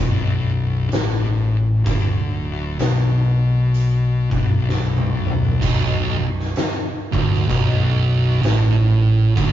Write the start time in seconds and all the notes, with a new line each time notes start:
Already playing: B1
0.00 B0
0.90 A1 A2, snare, closed hi-hat
1.84 D1 D2, kick, closed hi-hat
2.78 B1 B2, snare, closed hi-hat
3.74 closed hi-hat
4.31 B0 B1, kick
4.69 snare
4.97 high tom
5.26 mid tom
5.44 floor tom
5.61 B0 B1, kick, closed hi-hat, crash
6.18 B0 B1
6.40 snare
6.56 snare, closed hi-hat
7.12 D1 D2, kick
7.33 snare
7.48 B0 B1, kick, closed hi-hat
8.42 A1 A2, snare, closed hi-hat
9.36 D1 D2, kick, closed hi-hat